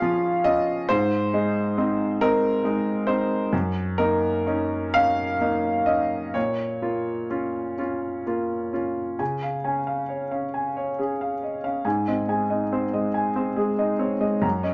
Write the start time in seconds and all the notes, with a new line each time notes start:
Already playing: C#3 F3 C#4 F4 G#4 F5
0.02 F3 F4
0.44 C#4 F4 D#5
0.89 G#2 C5
1.34 G#3 D#4
1.78 C4 D#4
2.21 C4 D#4 A#4
2.64 G#3 D#4
3.07 C4 D#4 C5
3.53 F#2
3.98 A#3 D#4 A#4
4.46 C#4 D#4
4.94 C#4 D#4 F5
5.41 A#3 D#4
5.86 C#4 D#4 D#5
6.34 A#2 C#5
6.82 A#3 F4
7.30 C#4 F4
7.78 C#4 F4
8.27 A#3 F4
8.73 C#4 F4
9.19 C#3 G#5
9.43 F5
9.64 C#4 G#5
9.87 F5
10.09 C#5
10.31 C#4 F5
10.54 G#5
10.77 C#5
10.99 C#4 G#4
11.21 F5
11.43 D#5
11.64 C#4 F5
11.85 G#2 G#5
12.08 C4 D#5
12.28 G#3 G#5
12.50 D#4 D#5
12.72 C4 C5
12.93 G#3 D#5
13.14 G#5
13.36 C4 C5
13.56 G#3 G#4
13.79 D#4 D#5
13.99 C4 C#5
14.20 G#3 D#5
14.42 F#2 A#5
14.63 C#4 D#5